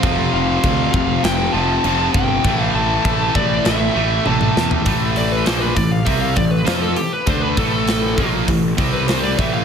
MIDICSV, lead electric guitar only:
0, 0, Header, 1, 2, 480
1, 0, Start_track
1, 0, Key_signature, 0, "minor"
1, 0, Tempo, 603622
1, 27, Time_signature, 4, 2, 24, 8
1, 7670, End_track
2, 0, Start_track
2, 0, Title_t, "Lead electric guitar"
2, 0, Program_c, 0, 29
2, 0, Note_on_c, 0, 77, 97
2, 258, Note_off_c, 0, 77, 0
2, 268, Note_on_c, 0, 77, 98
2, 982, Note_on_c, 0, 79, 98
2, 1008, Note_off_c, 0, 77, 0
2, 1213, Note_off_c, 0, 79, 0
2, 1217, Note_on_c, 0, 81, 98
2, 1669, Note_off_c, 0, 81, 0
2, 1704, Note_on_c, 0, 79, 101
2, 2086, Note_off_c, 0, 79, 0
2, 2086, Note_on_c, 0, 77, 101
2, 2181, Note_off_c, 0, 77, 0
2, 2184, Note_on_c, 0, 81, 104
2, 2668, Note_on_c, 0, 74, 82
2, 2678, Note_off_c, 0, 81, 0
2, 2904, Note_off_c, 0, 74, 0
2, 2907, Note_on_c, 0, 76, 91
2, 3394, Note_on_c, 0, 81, 87
2, 3400, Note_off_c, 0, 76, 0
2, 3724, Note_off_c, 0, 81, 0
2, 4111, Note_on_c, 0, 74, 87
2, 4231, Note_off_c, 0, 74, 0
2, 4231, Note_on_c, 0, 71, 74
2, 4340, Note_off_c, 0, 71, 0
2, 4344, Note_on_c, 0, 72, 86
2, 4460, Note_off_c, 0, 72, 0
2, 4463, Note_on_c, 0, 71, 75
2, 4581, Note_off_c, 0, 71, 0
2, 4581, Note_on_c, 0, 74, 86
2, 4699, Note_off_c, 0, 74, 0
2, 4704, Note_on_c, 0, 77, 85
2, 4824, Note_off_c, 0, 77, 0
2, 4824, Note_on_c, 0, 76, 81
2, 4940, Note_off_c, 0, 76, 0
2, 4943, Note_on_c, 0, 77, 101
2, 5058, Note_on_c, 0, 74, 80
2, 5060, Note_off_c, 0, 77, 0
2, 5176, Note_off_c, 0, 74, 0
2, 5176, Note_on_c, 0, 71, 81
2, 5301, Note_off_c, 0, 71, 0
2, 5301, Note_on_c, 0, 72, 79
2, 5417, Note_on_c, 0, 69, 82
2, 5419, Note_off_c, 0, 72, 0
2, 5537, Note_off_c, 0, 69, 0
2, 5544, Note_on_c, 0, 67, 81
2, 5661, Note_off_c, 0, 67, 0
2, 5668, Note_on_c, 0, 71, 70
2, 5783, Note_off_c, 0, 71, 0
2, 5794, Note_on_c, 0, 72, 88
2, 5902, Note_off_c, 0, 72, 0
2, 5905, Note_on_c, 0, 71, 77
2, 6022, Note_off_c, 0, 71, 0
2, 6027, Note_on_c, 0, 69, 84
2, 6133, Note_off_c, 0, 69, 0
2, 6142, Note_on_c, 0, 69, 72
2, 6593, Note_off_c, 0, 69, 0
2, 7102, Note_on_c, 0, 71, 83
2, 7216, Note_off_c, 0, 71, 0
2, 7219, Note_on_c, 0, 72, 79
2, 7339, Note_off_c, 0, 72, 0
2, 7342, Note_on_c, 0, 74, 78
2, 7461, Note_off_c, 0, 74, 0
2, 7465, Note_on_c, 0, 76, 99
2, 7578, Note_off_c, 0, 76, 0
2, 7581, Note_on_c, 0, 77, 104
2, 7670, Note_off_c, 0, 77, 0
2, 7670, End_track
0, 0, End_of_file